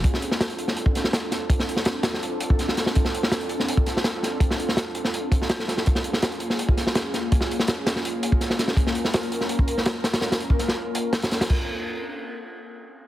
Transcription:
0.04 C4 D4 F4 A4, kick, closed hi-hat
0.14 snare
0.22 closed hi-hat
0.31 snare
0.41 snare, closed hi-hat
0.50 closed hi-hat
0.58 closed hi-hat
0.68 snare
0.76 closed hi-hat
0.86 kick
0.95 snare, closed hi-hat
1.04 snare
1.13 snare, closed hi-hat
1.31 snare, closed hi-hat
1.50 kick, closed hi-hat
1.59 snare
1.69 closed hi-hat
1.76 snare
1.85 snare, closed hi-hat
2.03 snare, closed hi-hat
2.14 snare
2.23 closed hi-hat
2.40 closed hi-hat
2.50 kick
2.59 snare, closed hi-hat
2.68 snare
2.77 snare, closed hi-hat
2.86 snare
2.95 kick, closed hi-hat
3.05 snare
3.14 closed hi-hat
3.23 snare
3.32 snare, closed hi-hat
3.41 closed hi-hat
3.49 closed hi-hat
3.60 snare
3.68 closed hi-hat
3.77 kick
3.86 snare, closed hi-hat
3.97 snare
4.04 snare, closed hi-hat
4.23 snare, closed hi-hat
4.40 kick, closed hi-hat
4.51 snare
4.60 closed hi-hat
4.69 snare
4.77 snare, closed hi-hat
4.95 closed hi-hat
5.05 snare
5.14 closed hi-hat
5.32 kick, closed hi-hat
5.42 snare
5.49 snare, closed hi-hat
5.59 snare
5.68 snare, closed hi-hat
5.77 snare
5.86 A#3 C#4 G#4, kick, closed hi-hat
5.95 snare
6.04 closed hi-hat
6.13 snare
6.22 snare, closed hi-hat
6.32 closed hi-hat
6.40 closed hi-hat
6.50 snare
6.59 closed hi-hat
6.69 kick
6.77 snare, closed hi-hat
6.87 snare
6.95 snare, closed hi-hat
7.14 snare, closed hi-hat
7.32 kick, closed hi-hat
7.41 snare
7.51 closed hi-hat
7.59 snare
7.67 snare, closed hi-hat
7.87 snare, closed hi-hat
7.96 snare
8.05 closed hi-hat
8.23 closed hi-hat
8.32 kick
8.41 snare, closed hi-hat
8.50 snare
8.59 snare, closed hi-hat
8.68 snare
8.77 A#4, kick, closed hi-hat
8.87 snare
8.95 closed hi-hat
9.05 snare
9.13 snare, closed hi-hat
9.23 closed hi-hat
9.32 closed hi-hat
9.41 snare
9.49 closed hi-hat
9.59 kick
9.68 closed hi-hat
9.78 snare
9.85 snare, closed hi-hat
10.04 snare, closed hi-hat
10.13 snare, closed hi-hat
10.21 snare, closed hi-hat
10.32 snare, closed hi-hat
10.40 closed hi-hat
10.50 kick
10.59 snare, closed hi-hat
10.68 snare
10.95 closed hi-hat
11.13 snare, closed hi-hat
11.22 snare, closed hi-hat
11.31 snare, closed hi-hat
11.41 snare, closed hi-hat
11.49 C4 D4 F4 A4, kick, crash

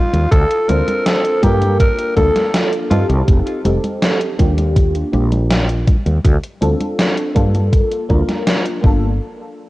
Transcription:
Already playing: F4
0.13 D#2, closed hi-hat, high conga
0.32 D2 A4, kick, closed hi-hat, high conga
0.51 closed hi-hat
0.68 D2 C4 D4 F4 A#4 C5, closed hi-hat, high conga
0.88 closed hi-hat, high conga
1.06 A4, snare, closed hi-hat, high conga
1.25 closed hi-hat
1.42 G2 A#3 D4 F4 G4 A#4, kick, closed hi-hat, high conga
1.62 closed hi-hat, high conga
1.80 A#4, kick, closed hi-hat, high conga
1.99 closed hi-hat
2.16 D2 A#3 D4 F4 A4, kick, closed hi-hat, high conga
2.36 snare, closed hi-hat, high conga
2.54 snare, closed hi-hat, high conga
2.73 closed hi-hat
2.90 G2 C4 D#4 F4 G4 A4, closed hi-hat, high conga
3.09 C2, closed hi-hat, high conga
3.28 F1, kick, closed hi-hat, high conga
3.47 closed hi-hat
3.64 F1 C4 D#4 G4 A4, closed hi-hat, high conga
3.84 closed hi-hat, high conga
4.02 snare, closed hi-hat, high conga
4.21 closed hi-hat
4.39 D#2 A#3 D4 F4 G4, kick, closed hi-hat, high conga
4.58 closed hi-hat, high conga
4.76 kick, closed hi-hat, high conga
4.95 closed hi-hat
5.12 A#1 A#3 D4 F4 G4, closed hi-hat, high conga
5.32 closed hi-hat, high conga
5.51 snare, closed hi-hat, high conga
5.69 closed hi-hat
5.87 kick, closed hi-hat, high conga
6.06 D#2, closed hi-hat, high conga
6.24 D2, kick, closed hi-hat, high conga
6.43 closed hi-hat
6.61 D2 C4 D4 F4 A4, closed hi-hat, high conga
6.80 closed hi-hat, high conga
6.99 snare, closed hi-hat, high conga
7.17 closed hi-hat
7.34 G2 A#3 D4 F4 A4, kick, closed hi-hat, high conga
7.55 closed hi-hat, high conga
7.73 kick, closed hi-hat, high conga
7.91 closed hi-hat
8.09 D2 A#3 D4 F4 A#4, kick, closed hi-hat, high conga
8.29 snare, closed hi-hat, high conga
8.47 snare, closed hi-hat, high conga
8.65 closed hi-hat
8.81 G1 A#3 D4 F4, kick
8.86 A4

